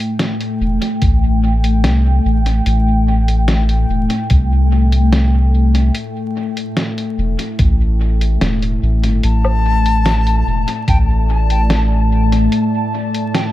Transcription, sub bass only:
0.61 E1
1.02 A1
1.84 C2
2.25 A1
2.66 A1
3.89 E1
4.31 C2
7.18 E1
7.59 A1
8.41 E1
8.83 A1
9.04 G1
9.24 A1
10.47 E1
10.88 A1

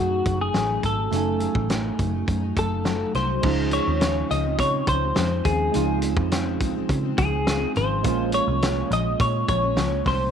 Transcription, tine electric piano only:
Already playing: A3 C#4 D#4 G#4
1.11 A3 C#4 D#4
1.16 G#5
3.41 G#3 C#4 D#4
3.46 F4
5.72 G#3 C4 D#4
5.77 F4
8.03 G#3 A#3 C#4
8.08 F4

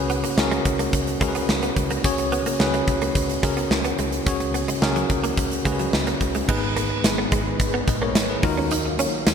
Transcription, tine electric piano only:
Already playing: C#3 C#4 F#4 G#4 A#4 B4
0.37 C#4 F#4 G#4 A#4
1.20 C#4 F#4 G#4 A#4
1.28 B4
2.04 C#3 C#4 F#4 G#4 C#5
2.59 C#4 F#4 G#4 B4
3.43 C#4 F#4 G#4 A#4
4.26 C#3 C#4 F#4 G#4 C#5
4.82 C#4 F#4 G#4 A#4
5.65 C#4 F#4 G#4 B4
6.48 G#2 B3 D#4 G#4 B4
7.88 B4 D#5
8.02 A#4 C#5
8.30 G#4 B4
8.43 D#3 D#4 F4 F#4 A#4

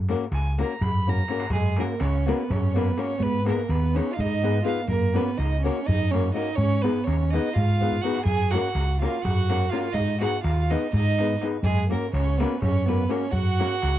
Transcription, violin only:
1.53 G#3
1.77 A#3
2.00 C#4
2.26 B3
2.49 C#4
2.74 B3
2.97 C#4
3.18 B3
3.45 A#3
3.68 B3
3.94 C#4
4.11 F4
4.16 D#4
4.63 F4
4.85 A#3
5.13 B3
5.37 D#4
5.62 C#4
5.86 D#4
6.11 C#4
6.34 D#4
6.57 C#4
6.83 B3
7.07 C#4
7.32 D#4
7.54 F4
8.03 F#4
8.24 G#4
8.51 F#4
9.00 F4
9.24 F#4
9.71 F4
9.94 D#4
10.21 F#4
10.43 F4
10.71 D#4
10.93 D#4
11.64 G#3
11.89 A#3
12.11 C#4
12.38 B3
12.61 C#4
12.85 B3
13.09 C#4
13.31 F#4

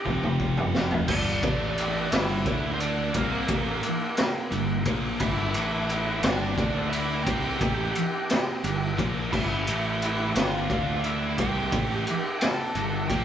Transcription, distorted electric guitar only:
0.05 F2 C3 F3
1.09 G2 D3 G3
1.42 A2 E3 A3
2.13 G2 D3 G3
2.46 D3 A3 D4
3.15 C3 G3 C4
3.49 A2 E3 A3
4.51 G2 D3
4.86 A#2 F3 A#3
5.20 G2 D3 G3
5.55 A2 E3 A3
6.23 G2 D3 G3
6.57 D3 A3 D4
7.25 C3 G3 C4
7.59 A2 E3 A3
8.64 G2 D3
8.97 A#2 F3 A#3
9.32 G2 D3 G3
9.67 A2 E3 A3
10.36 G2 D3 G3
10.71 D3 A3 D4
11.39 C3 G3 C4
11.73 A2 E3 A3
12.76 G2 D3
13.10 A#2 F3 A#3

